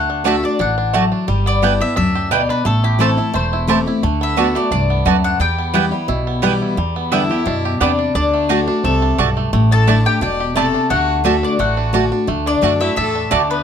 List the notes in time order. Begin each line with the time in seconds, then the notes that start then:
Already playing: D2 D3 A3 F#5
0.10 D4
0.24 D3 A3 D4 F#4 D5 E5 A5
0.43 D4 F#4 D5
0.59 A1 E3 D4 F#5
0.78 D4
0.93 F#3 A3 F#4 D5 A5
1.12 D4
1.28 G1 G3
1.46 B3 D5
1.62 G3 B3 D4 E4 B4 G5
1.80 B3 E4 G4 E5
1.96 D2 F#2 D4 E5
2.15 G4
2.31 B2 G3 B3 E4 B4 D5 G5
2.49 D4 B4
2.65 A1 A2 A3 A4
2.84 E4 G4
2.99 E3 A3 C4 E4 A4 C5 A5
3.17 C4 E4
3.34 E1 E2 A3 C5
3.53 E4
3.67 E3 A3 C4 E4 G4 C5 A5
3.86 C4 E4
4.03 D2 D3 A3
4.21 B3 E5
4.37 D3 A3 B3 D4 F#4 D5 A5
4.55 A3 B3 F#4 D5
4.71 C2 G2 D4 D5
4.90 B3
5.05 D2 F#2 A3 B3 F#4 D5 A5
5.24 D4 F#5
5.40 E2 G3 G5
5.59 B3
5.74 E3 G3 B3 E4 G4 B4 G5
5.91 G3 B3 E4
6.08 B1 B2 E4
6.27 B3
6.42 E3 G3 B3 E4 B4 G5
6.62 E4
6.77 E2 G3
6.96 B3
7.11 D3 G3 B3 D4 E4 D5 E5 G5
7.29 B3 E4 G4
7.46 F#2 B2 D4
7.65 G4
7.80 E2 C3 G3 B3 D4 E4 D5 G5
7.99 D4
8.15 D2 D3 D4 D5
8.34 A3
8.49 D3 A3 D4 F#4 D5 A5
8.67 D4 F#4
8.84 C2 C3 A3 A4 E5
9.02 D4
9.18 B1 G2 A3 D4 F#4 D5 A5
9.37 A3
9.53 A1 A2 A3
9.71 D4 A4 A5
9.87 D3 A3 D4 E4 D5 A5
10.05 D4 E4 G4 G5
10.21 E1 B2 D4 D5 G5
10.40 G4
10.55 C3 A3 E4 A4 D5 A5
10.74 D4
10.90 D2 D3 A3 F#4 F#5
11.24 D3 A3 D4 F#4 A4 D5 E5 A5
11.43 D4 D5
11.59 A1 A2 A3 F#4 F#5
11.77 D4
11.93 D3 A3 D4 F#4 D5 A5
12.12 D4 F#4
12.27 D2 D3 A3
12.46 D4 D5
12.61 F#2 D3 A3 D4 F#4 D5 A5
12.80 A3 D4 E4 F#4 E5
12.96 E2 A2 D4 A4 E5
13.15 D4
13.31 D2 D3 A3 D4 F#4 D5 A5
13.50 B3 D4 B4